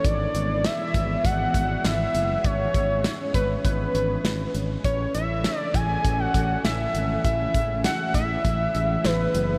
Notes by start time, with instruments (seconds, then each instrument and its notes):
Already playing: string machine E3
0.05 fretless electric bass G#1, string machine G#3 B3 G#4, analog synth lead D5, kick, closed hi-hat
0.35 fretless electric bass G#1, closed hi-hat
0.65 analog synth lead E5, snare, closed hi-hat
0.94 fretless electric bass G#1, kick, closed hi-hat
1.25 fretless electric bass G#1, analog synth lead F#5, kick, closed hi-hat
1.54 fretless electric bass G#1, kick, closed hi-hat
1.84 fretless electric bass G#1, analog synth lead E5, snare, closed hi-hat
2.14 fretless electric bass F#1, closed hi-hat
2.44 fretless electric bass G#1, string machine C#4, analog synth lead C#5, kick, closed hi-hat
2.74 fretless electric bass G#1, kick, closed hi-hat
3.04 snare, closed hi-hat
3.34 fretless electric bass G#1, analog synth lead B4, kick, closed hi-hat
3.65 fretless electric bass G#1, analog synth lead B4, kick, closed hi-hat
3.95 fretless electric bass G#1, closed hi-hat
4.24 fretless electric bass G#1, snare, closed hi-hat
4.55 fretless electric bass G#1, closed hi-hat
4.84 fretless electric bass A1, string machine E3 A3 A4, analog synth lead C#5, kick, closed hi-hat
5.15 fretless electric bass A1, analog synth lead E5, closed hi-hat
5.44 snare, closed hi-hat
5.58 analog synth lead D5
5.74 fretless electric bass A1, analog synth lead G#5, kick, closed hi-hat
6.05 fretless electric bass A1, kick, closed hi-hat
6.19 analog synth lead F#5
6.34 fretless electric bass A1, kick, closed hi-hat
6.64 fretless electric bass A1, analog synth lead E5, snare, closed hi-hat
6.95 fretless electric bass G#1, closed hi-hat
7.24 fretless electric bass A1, string machine G#4, analog synth lead E5, kick, closed hi-hat
7.54 fretless electric bass A1, kick, closed hi-hat
7.84 analog synth lead F#5, snare, closed hi-hat
8.14 fretless electric bass A1, analog synth lead E5, kick, closed hi-hat
8.45 fretless electric bass A1, kick, closed hi-hat
8.75 fretless electric bass A1, closed hi-hat
9.05 fretless electric bass A1, analog synth lead B4, snare, closed hi-hat
9.35 fretless electric bass F#1, closed hi-hat